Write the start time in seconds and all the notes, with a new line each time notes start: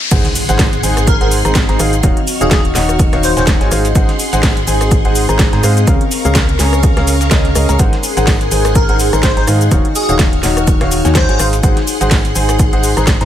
Already playing: riser
0.11 G#1 G#3 C4 D#4 G#4 C5 F#5 C6, kick, closed hi-hat, crash, impact, cabasa, shaker
0.25 D#5, snare, closed hi-hat
0.30 F#4
0.35 open hi-hat, cabasa, shaker
0.49 G#1 G#3 D#4 G#4 C5 F#5, closed hi-hat, cabasa
0.59 kick, snare, closed hi-hat, open hi-hat, cabasa
0.73 closed hi-hat
0.83 G#1 G#3 D#4 G#4 C5 G#5, open hi-hat, cabasa, shaker
0.97 cross-stick, closed hi-hat, cabasa
1.07 A#4, kick, closed hi-hat, cabasa, shaker
1.21 G#1 G#3 D#4 G#4 A#4 C5 F#5, closed hi-hat
1.31 open hi-hat, cabasa, shaker
1.45 G#1 G#3 D#4 G#4 C5 A#5, cross-stick, closed hi-hat, cabasa
1.55 kick, snare, closed hi-hat, cabasa, shaker
1.69 G#1 G#3 D#4 G#4 C5 A#5, snare, closed hi-hat
1.79 G#1 D#3 D#4 G#4 C5 F5, cross-stick, open hi-hat, cabasa, shaker
1.93 closed hi-hat, cabasa
2.03 D#3 C#4 D#4 F#4 C#5 F5 C#6 F6, kick, closed hi-hat, cabasa, shaker
2.17 closed hi-hat
2.27 open hi-hat, cabasa, shaker
2.41 D#1 D#3 D#4 F#4 G#4 C#5 F5, closed hi-hat, cabasa
2.51 G#4, kick, snare, closed hi-hat, cabasa, shaker
2.65 closed hi-hat
2.75 D#1 D#3 D#4 F#4 C#5 F#5, snare, open hi-hat, cabasa, shaker
2.89 cross-stick, closed hi-hat, cabasa
2.99 kick, closed hi-hat, cabasa, shaker
3.13 D#1 D#3 D#4 F#4 C#5 F5, cross-stick, snare, closed hi-hat
3.23 C5, open hi-hat, cabasa, shaker
3.37 D#1 D#3 D#4 F#4 C5 C#5 G#5, snare, closed hi-hat, cabasa
3.47 kick, snare, closed hi-hat, cabasa, shaker
3.61 G#1 G#3 D#4 F#4 C#5 G#5, snare, closed hi-hat
3.71 G#1 G#3 C4 D#4 G#4 C5 F5 F#5 C6, cross-stick, open hi-hat, cabasa, shaker
3.85 closed hi-hat, cabasa
3.95 G#1 G#3 D#4 G#4 C5 F#5, kick, closed hi-hat, cabasa, shaker
4.09 G#4, snare, closed hi-hat
4.19 open hi-hat, cabasa, shaker
4.33 G#1 G#3 D#4 G#4 C5 F#5, closed hi-hat, cabasa
4.43 kick, snare, closed hi-hat, open hi-hat, cabasa
4.57 closed hi-hat
4.67 G#1 G#3 D#4 G#4 C5 G#5, open hi-hat, cabasa, shaker
4.81 cross-stick, closed hi-hat, cabasa
4.91 kick, closed hi-hat, cabasa, shaker
5.05 G#1 G#3 D#4 G#4 C5 F#5, closed hi-hat
5.15 open hi-hat, cabasa, shaker
5.29 G#1 G#3 D#4 G#4 C5 A#5, cross-stick, closed hi-hat, cabasa
5.39 kick, snare, closed hi-hat, cabasa, shaker
5.53 G#2 G#3 D#4 G#4 C5 A#5, snare, closed hi-hat
5.63 G#2 D#4 G#4 C5 F5, cross-stick, open hi-hat, cabasa, shaker
5.77 closed hi-hat, cabasa
5.87 C#2 C#3 C#4 G#4 A#4 F5 C#6, kick, closed hi-hat, cabasa, shaker
6.01 closed hi-hat
6.11 open hi-hat, cabasa, shaker
6.23 C#2 C#3 C#4 G#4 A#4 F5, closed hi-hat, cabasa
6.35 kick, snare, closed hi-hat, cabasa, shaker
6.49 closed hi-hat
6.59 C#2 C#3 C#4 G#4 A#4 G#5, snare, open hi-hat, cabasa, shaker
6.73 cross-stick, closed hi-hat, cabasa
6.83 kick, closed hi-hat, cabasa, shaker
6.97 C#2 C#3 C#4 G#4 A#4 F5, cross-stick, snare, closed hi-hat
7.07 open hi-hat, cabasa, shaker
7.21 snare, closed hi-hat, cabasa
7.31 C#2 C#3 C#4 G#4 A#4 D#5, kick, snare, closed hi-hat, cabasa, shaker
7.45 snare, closed hi-hat
7.55 C#2 C#4 G#4 A#4 D#5, cross-stick, open hi-hat, cabasa, shaker
7.69 C#2 C#4 G#4 A#4 A#5, closed hi-hat, cabasa
7.79 G#1 G#3 D#4 G#4 C5 F#5 C6, kick, closed hi-hat, cabasa, shaker
7.93 snare, closed hi-hat
8.03 open hi-hat, cabasa, shaker
8.15 G#1 G#3 D#4 G#4 C5 F#5, closed hi-hat, cabasa
8.27 kick, snare, closed hi-hat, open hi-hat, cabasa
8.41 closed hi-hat
8.51 G#1 G#3 D#4 G#4 C5 G#5, open hi-hat, cabasa, shaker
8.65 cross-stick, closed hi-hat, cabasa
8.75 A#4, kick, closed hi-hat, cabasa, shaker
8.89 G#1 G#3 D#4 G#4 A#4 C5 F#5, closed hi-hat
8.99 open hi-hat, cabasa, shaker
9.13 G#1 G#3 D#4 G#4 C5 A#5, cross-stick, closed hi-hat, cabasa
9.23 C5, kick, snare, closed hi-hat, cabasa, shaker
9.37 G#1 G#3 D#4 G#4 C5 A#5, snare, closed hi-hat
9.47 G#2 D#3 D#4 G#4 C5 F5, cross-stick, open hi-hat, cabasa, shaker
9.61 closed hi-hat, cabasa
9.71 D#1 D#3 D#4 F#4 C#5 F5 C#6 F6, kick, closed hi-hat, cabasa, shaker
9.84 F#4, closed hi-hat
9.95 G#4, open hi-hat, cabasa, shaker
10.09 D#1 D#3 D#4 F#4 C#5 F5, closed hi-hat, cabasa
10.19 kick, snare, closed hi-hat, cabasa, shaker
10.33 closed hi-hat
10.43 D#1 D#3 D#4 F#4 C#5 F#5, snare, open hi-hat, cabasa, shaker
10.57 cross-stick, closed hi-hat, cabasa
10.67 kick, closed hi-hat, cabasa, shaker
10.81 D#1 D#3 D#4 F#4 C#5 F5, cross-stick, snare, closed hi-hat
10.91 open hi-hat, cabasa, shaker
11.05 D#2 D#3 D#4 F#4 C#5 G#5, snare, closed hi-hat, cabasa
11.15 C5, kick, snare, closed hi-hat, cabasa, shaker
11.29 G#1 G#3 D#4 F#4 C#5 G#5, snare, closed hi-hat
11.39 G#1 G#3 D#4 G#4 C5 F5 F#5 C6, cross-stick, open hi-hat, cabasa, shaker
11.46 G#4
11.53 closed hi-hat, cabasa
11.63 G#1 G#3 D#4 G#4 C5 F#5, kick, closed hi-hat, cabasa, shaker
11.73 F#5, snare, closed hi-hat
11.87 open hi-hat, cabasa, shaker
12.01 G#1 G#3 D#4 G#4 C5 F#5, closed hi-hat, cabasa
12.11 kick, snare, closed hi-hat, open hi-hat, cabasa
12.25 closed hi-hat
12.35 G#1 G#3 D#4 G#4 C5 G#5, open hi-hat, cabasa, shaker
12.49 cross-stick, closed hi-hat, cabasa
12.59 kick, closed hi-hat, cabasa, shaker
12.73 G#1 G#3 D#4 G#4 C5 F#5, closed hi-hat
12.83 open hi-hat, cabasa, shaker
12.97 G#1 G#3 D#4 G#4 C5 A#5, cross-stick, closed hi-hat, cabasa
13.07 kick, snare, closed hi-hat, cabasa, shaker
13.21 G#2 G#3 D#4 G#4 C5 A#5, snare, closed hi-hat